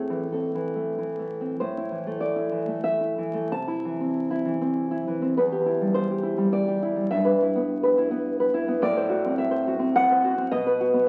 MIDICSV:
0, 0, Header, 1, 2, 480
1, 0, Start_track
1, 0, Key_signature, 0, "minor"
1, 0, Tempo, 652174
1, 1169, Time_signature, 3, 2, 24, 8
1, 1169, Tempo, 623701
1, 2129, Tempo, 688073
1, 2609, Tempo, 614754
1, 4049, Tempo, 579151
1, 5969, Tempo, 565504
1, 8855, End_track
2, 0, Start_track
2, 0, Title_t, "Nylon-string guitar"
2, 0, Program_c, 0, 24
2, 0, Note_on_c, 0, 45, 63
2, 0, Note_on_c, 0, 57, 53
2, 0, Note_on_c, 0, 60, 65
2, 0, Note_on_c, 0, 68, 81
2, 72, Note_on_c, 0, 52, 51
2, 195, Note_off_c, 0, 60, 0
2, 195, Note_off_c, 0, 68, 0
2, 238, Note_on_c, 0, 69, 56
2, 247, Note_on_c, 0, 60, 43
2, 394, Note_off_c, 0, 52, 0
2, 400, Note_off_c, 0, 57, 0
2, 402, Note_on_c, 0, 52, 50
2, 556, Note_on_c, 0, 57, 48
2, 714, Note_off_c, 0, 52, 0
2, 723, Note_on_c, 0, 52, 53
2, 869, Note_off_c, 0, 57, 0
2, 878, Note_on_c, 0, 57, 45
2, 914, Note_off_c, 0, 69, 0
2, 917, Note_off_c, 0, 60, 0
2, 1036, Note_on_c, 0, 60, 51
2, 1140, Note_off_c, 0, 45, 0
2, 1178, Note_on_c, 0, 72, 77
2, 1182, Note_off_c, 0, 60, 0
2, 1183, Note_off_c, 0, 57, 0
2, 1183, Note_on_c, 0, 45, 63
2, 1184, Note_off_c, 0, 52, 0
2, 1314, Note_on_c, 0, 64, 58
2, 1418, Note_on_c, 0, 52, 59
2, 1537, Note_on_c, 0, 57, 58
2, 1633, Note_off_c, 0, 72, 0
2, 1644, Note_on_c, 0, 74, 72
2, 1753, Note_off_c, 0, 64, 0
2, 1762, Note_on_c, 0, 64, 56
2, 1871, Note_off_c, 0, 52, 0
2, 1880, Note_on_c, 0, 52, 53
2, 1998, Note_off_c, 0, 57, 0
2, 2007, Note_on_c, 0, 57, 51
2, 2107, Note_off_c, 0, 74, 0
2, 2130, Note_on_c, 0, 76, 93
2, 2239, Note_off_c, 0, 64, 0
2, 2248, Note_on_c, 0, 64, 51
2, 2362, Note_off_c, 0, 52, 0
2, 2370, Note_on_c, 0, 52, 59
2, 2472, Note_off_c, 0, 57, 0
2, 2480, Note_on_c, 0, 57, 54
2, 2587, Note_off_c, 0, 45, 0
2, 2590, Note_off_c, 0, 76, 0
2, 2603, Note_off_c, 0, 57, 0
2, 2604, Note_on_c, 0, 48, 67
2, 2607, Note_on_c, 0, 81, 93
2, 2610, Note_off_c, 0, 52, 0
2, 2610, Note_off_c, 0, 64, 0
2, 2729, Note_on_c, 0, 64, 66
2, 2862, Note_on_c, 0, 52, 62
2, 2985, Note_on_c, 0, 60, 54
2, 3210, Note_off_c, 0, 64, 0
2, 3220, Note_on_c, 0, 64, 64
2, 3326, Note_off_c, 0, 52, 0
2, 3335, Note_on_c, 0, 52, 55
2, 3450, Note_off_c, 0, 60, 0
2, 3459, Note_on_c, 0, 60, 58
2, 3683, Note_off_c, 0, 64, 0
2, 3692, Note_on_c, 0, 64, 63
2, 3781, Note_off_c, 0, 81, 0
2, 3810, Note_off_c, 0, 52, 0
2, 3820, Note_on_c, 0, 52, 62
2, 3924, Note_off_c, 0, 60, 0
2, 3933, Note_on_c, 0, 60, 59
2, 4016, Note_off_c, 0, 48, 0
2, 4049, Note_off_c, 0, 64, 0
2, 4050, Note_off_c, 0, 60, 0
2, 4052, Note_off_c, 0, 52, 0
2, 4053, Note_on_c, 0, 71, 83
2, 4059, Note_on_c, 0, 40, 76
2, 4177, Note_on_c, 0, 67, 61
2, 4290, Note_on_c, 0, 64, 62
2, 4417, Note_on_c, 0, 55, 62
2, 4511, Note_off_c, 0, 71, 0
2, 4527, Note_on_c, 0, 72, 87
2, 4649, Note_off_c, 0, 67, 0
2, 4659, Note_on_c, 0, 67, 68
2, 4753, Note_off_c, 0, 64, 0
2, 4763, Note_on_c, 0, 64, 60
2, 4874, Note_off_c, 0, 55, 0
2, 4884, Note_on_c, 0, 55, 60
2, 4983, Note_off_c, 0, 72, 0
2, 5010, Note_on_c, 0, 74, 108
2, 5127, Note_off_c, 0, 67, 0
2, 5137, Note_on_c, 0, 67, 67
2, 5246, Note_off_c, 0, 64, 0
2, 5256, Note_on_c, 0, 64, 70
2, 5358, Note_off_c, 0, 55, 0
2, 5368, Note_on_c, 0, 55, 63
2, 5451, Note_off_c, 0, 40, 0
2, 5464, Note_off_c, 0, 74, 0
2, 5484, Note_off_c, 0, 55, 0
2, 5487, Note_off_c, 0, 64, 0
2, 5487, Note_off_c, 0, 67, 0
2, 5489, Note_on_c, 0, 76, 100
2, 5493, Note_on_c, 0, 43, 82
2, 5608, Note_on_c, 0, 71, 72
2, 5751, Note_on_c, 0, 64, 64
2, 5863, Note_on_c, 0, 59, 66
2, 6085, Note_off_c, 0, 71, 0
2, 6095, Note_on_c, 0, 71, 77
2, 6207, Note_off_c, 0, 64, 0
2, 6217, Note_on_c, 0, 64, 70
2, 6319, Note_off_c, 0, 59, 0
2, 6329, Note_on_c, 0, 59, 70
2, 6565, Note_off_c, 0, 71, 0
2, 6575, Note_on_c, 0, 71, 71
2, 6666, Note_off_c, 0, 76, 0
2, 6684, Note_off_c, 0, 64, 0
2, 6695, Note_on_c, 0, 64, 76
2, 6804, Note_off_c, 0, 59, 0
2, 6814, Note_on_c, 0, 59, 74
2, 6907, Note_off_c, 0, 43, 0
2, 6932, Note_on_c, 0, 45, 94
2, 6934, Note_off_c, 0, 59, 0
2, 6934, Note_off_c, 0, 64, 0
2, 6935, Note_off_c, 0, 71, 0
2, 6938, Note_on_c, 0, 74, 127
2, 7060, Note_on_c, 0, 72, 76
2, 7167, Note_on_c, 0, 66, 74
2, 7301, Note_on_c, 0, 60, 75
2, 7386, Note_off_c, 0, 74, 0
2, 7409, Note_on_c, 0, 76, 96
2, 7508, Note_off_c, 0, 72, 0
2, 7519, Note_on_c, 0, 72, 73
2, 7648, Note_off_c, 0, 66, 0
2, 7659, Note_on_c, 0, 66, 78
2, 7748, Note_off_c, 0, 60, 0
2, 7758, Note_on_c, 0, 60, 72
2, 7867, Note_off_c, 0, 76, 0
2, 7897, Note_on_c, 0, 78, 127
2, 8021, Note_off_c, 0, 72, 0
2, 8032, Note_on_c, 0, 72, 78
2, 8130, Note_off_c, 0, 66, 0
2, 8140, Note_on_c, 0, 66, 84
2, 8244, Note_off_c, 0, 60, 0
2, 8254, Note_on_c, 0, 60, 74
2, 8332, Note_off_c, 0, 45, 0
2, 8354, Note_off_c, 0, 78, 0
2, 8370, Note_off_c, 0, 60, 0
2, 8372, Note_on_c, 0, 47, 91
2, 8372, Note_on_c, 0, 75, 120
2, 8373, Note_off_c, 0, 66, 0
2, 8380, Note_off_c, 0, 72, 0
2, 8499, Note_on_c, 0, 71, 82
2, 8618, Note_on_c, 0, 66, 80
2, 8729, Note_on_c, 0, 59, 74
2, 8833, Note_off_c, 0, 75, 0
2, 8855, Note_off_c, 0, 47, 0
2, 8855, Note_off_c, 0, 59, 0
2, 8855, Note_off_c, 0, 66, 0
2, 8855, Note_off_c, 0, 71, 0
2, 8855, End_track
0, 0, End_of_file